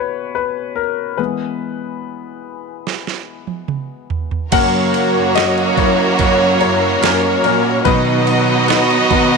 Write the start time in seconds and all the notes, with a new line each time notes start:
Already playing: B2 F#3 C#4 E4 F#4 B4 C#5
0.35 B4
0.76 A#4
1.17 E3 G#3 B3 B4
2.87 snare
3.07 snare
3.47 high tom
3.68 mid tom
4.10 floor tom
4.31 floor tom
4.51 F#2 C#3 F#3 A#3 C#4 F#4 A#4 C#5 F#5, kick, crash, ride
4.94 ride
5.15 F#2
5.35 F#3 A#3 C#4 F#4 D#5, snare, ride
5.58 ride
5.76 F#2 F#3 A#3 C#4 E4 F#4 C#5, kick, ride
6.18 F#2 C#3 F#3 A#3 C#4 F#4, kick, ride
6.61 F#2 E4 C#5, ride
7.02 F#2 F#3 A#3 C#4 F#4 A#4, snare, ride
7.43 A#2 F#3 A#3 C#4 F#4 A#4, ride
7.85 B2 D#3 F#3 B3 D#4 F#4 B4 D#5, kick, ride
8.27 ride
8.68 F#3 B3 D#4 F#4 B4, snare, ride
8.90 ride
9.10 B2 D#3 F#3 B3 D#4 F#4, kick, ride